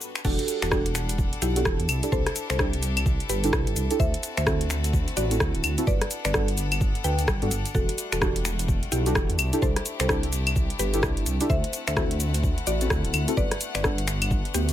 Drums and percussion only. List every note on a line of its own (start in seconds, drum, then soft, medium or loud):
0.01 cabasa medium
0.15 finger snap medium
0.15 cabasa soft
0.25 kick loud
0.25 crash loud
0.25 cabasa soft
0.39 closed hi-hat medium
0.48 open hi-hat loud
0.48 cabasa medium
0.62 finger snap medium
0.62 closed hi-hat medium
0.62 cabasa soft
0.72 kick loud
0.72 cross-stick loud
0.72 cabasa soft
0.86 closed hi-hat medium
0.95 finger snap medium
0.95 open hi-hat loud
0.95 cabasa medium
1.09 closed hi-hat medium
1.09 cabasa soft
1.18 kick loud
1.18 cabasa soft
1.33 closed hi-hat soft
1.42 open hi-hat loud
1.42 cabasa medium
1.56 closed hi-hat medium
1.56 cabasa soft
1.65 kick loud
1.65 cross-stick loud
1.65 cabasa soft
1.80 closed hi-hat soft
1.89 open hi-hat loud
1.89 cabasa medium
1.89 claves medium
2.03 closed hi-hat medium
2.03 cabasa soft
2.12 kick loud
2.12 cabasa soft
2.27 cross-stick medium
2.27 closed hi-hat medium
2.36 open hi-hat loud
2.36 cabasa medium
2.50 finger snap medium
2.50 closed hi-hat medium
2.50 cabasa soft
2.59 kick loud
2.59 cross-stick loud
2.59 cabasa soft
2.73 closed hi-hat soft
2.83 open hi-hat loud
2.83 cabasa medium
2.97 closed hi-hat medium
2.97 cabasa soft
2.97 claves medium
3.06 kick loud
3.06 cabasa soft
3.20 closed hi-hat soft
3.29 open hi-hat loud
3.29 cabasa medium
3.44 closed hi-hat medium
3.44 cabasa soft
3.53 kick loud
3.53 cross-stick loud
3.53 cabasa soft
3.67 closed hi-hat soft
3.76 open hi-hat loud
3.76 cabasa medium
3.91 closed hi-hat medium
3.91 cabasa soft
4.00 kick loud
4.00 cabasa soft
4.14 closed hi-hat medium
4.23 open hi-hat loud
4.23 cabasa medium
4.37 finger snap medium
4.37 closed hi-hat medium
4.37 cabasa soft
4.47 kick loud
4.47 cross-stick loud
4.47 cabasa soft
4.61 closed hi-hat soft
4.70 finger snap medium
4.70 open hi-hat loud
4.70 cabasa medium
4.84 closed hi-hat medium
4.84 cabasa soft
4.93 kick loud
4.93 cabasa soft
5.08 closed hi-hat soft
5.17 open hi-hat loud
5.17 cabasa medium
5.31 closed hi-hat medium
5.31 cabasa soft
5.40 kick loud
5.40 cross-stick loud
5.40 cabasa soft
5.55 closed hi-hat soft
5.64 open hi-hat loud
5.64 cabasa medium
5.64 claves medium
5.78 closed hi-hat medium
5.78 cabasa soft
5.87 kick loud
5.87 cabasa soft
6.01 cross-stick medium
6.01 closed hi-hat medium
6.11 open hi-hat loud
6.11 cabasa medium
6.25 finger snap medium
6.25 closed hi-hat medium
6.25 cabasa soft
6.34 kick loud
6.34 cross-stick loud
6.34 cabasa soft
6.48 closed hi-hat medium
6.58 open hi-hat loud
6.58 cabasa medium
6.72 closed hi-hat medium
6.72 cabasa soft
6.72 claves medium
6.81 kick loud
6.81 cabasa soft
6.95 closed hi-hat soft
7.04 open hi-hat loud
7.04 cabasa medium
7.19 closed hi-hat medium
7.19 cabasa soft
7.28 kick loud
7.28 cross-stick loud
7.28 cabasa soft
7.42 closed hi-hat soft
7.51 open hi-hat loud
7.51 cabasa medium
7.66 closed hi-hat medium
7.66 cabasa soft
7.75 kick loud
7.75 cabasa soft
7.89 closed hi-hat medium
7.98 open hi-hat loud
7.98 cabasa medium
8.12 finger snap medium
8.12 closed hi-hat medium
8.12 cabasa soft
8.22 kick loud
8.22 cross-stick loud
8.22 cabasa soft
8.36 closed hi-hat medium
8.45 finger snap medium
8.45 open hi-hat loud
8.45 cabasa medium
8.59 closed hi-hat medium
8.59 cabasa soft
8.68 kick loud
8.68 cabasa soft
8.83 closed hi-hat soft
8.92 open hi-hat loud
8.92 cabasa medium
9.06 closed hi-hat medium
9.06 cabasa soft
9.15 kick loud
9.15 cross-stick loud
9.15 cabasa soft
9.30 closed hi-hat soft
9.39 open hi-hat loud
9.39 cabasa medium
9.39 claves medium
9.53 closed hi-hat medium
9.53 cabasa soft
9.62 kick loud
9.62 cabasa soft
9.76 cross-stick medium
9.76 closed hi-hat medium
9.86 open hi-hat loud
9.86 cabasa medium
10.00 finger snap medium
10.00 closed hi-hat medium
10.00 cabasa soft
10.09 kick loud
10.09 cross-stick loud
10.09 cabasa soft
10.23 closed hi-hat medium
10.33 open hi-hat loud
10.33 cabasa medium
10.47 closed hi-hat medium
10.47 cabasa soft
10.47 claves medium
10.56 kick loud
10.56 cabasa soft
10.70 closed hi-hat soft
10.79 open hi-hat loud
10.79 cabasa medium
10.94 closed hi-hat medium
10.94 cabasa soft
11.03 kick loud
11.03 cross-stick loud
11.03 cabasa soft
11.17 closed hi-hat soft
11.26 open hi-hat loud
11.26 cabasa medium
11.41 closed hi-hat medium
11.41 cabasa soft
11.50 kick loud
11.50 cabasa soft
11.64 closed hi-hat medium
11.73 open hi-hat loud
11.73 cabasa medium
11.88 finger snap medium
11.88 closed hi-hat medium
11.88 cabasa soft
11.97 kick loud
11.97 cross-stick loud
11.97 cabasa soft
12.11 closed hi-hat medium
12.20 open hi-hat loud
12.20 cabasa medium
12.34 closed hi-hat medium
12.34 cabasa soft
12.43 kick loud
12.43 cabasa soft
12.58 closed hi-hat soft
12.67 open hi-hat loud
12.67 cabasa medium
12.81 closed hi-hat medium
12.81 cabasa soft
12.90 kick loud
12.90 cross-stick loud
12.90 cabasa soft
13.05 closed hi-hat soft
13.14 open hi-hat loud
13.14 cabasa medium
13.14 claves medium
13.28 closed hi-hat medium
13.28 cabasa soft
13.37 kick loud
13.37 cabasa soft
13.51 cross-stick medium
13.51 closed hi-hat medium
13.61 open hi-hat loud
13.61 cabasa medium
13.75 finger snap medium
13.75 closed hi-hat medium
13.75 cabasa soft
13.84 kick loud
13.84 cross-stick loud
13.84 cabasa soft
13.98 closed hi-hat medium
14.08 finger snap medium
14.08 open hi-hat loud
14.08 cabasa medium
14.22 closed hi-hat medium
14.22 cabasa soft
14.22 claves medium
14.31 kick loud
14.31 cabasa soft
14.45 closed hi-hat soft
14.54 open hi-hat loud
14.54 cabasa medium
14.69 closed hi-hat medium
14.69 cabasa soft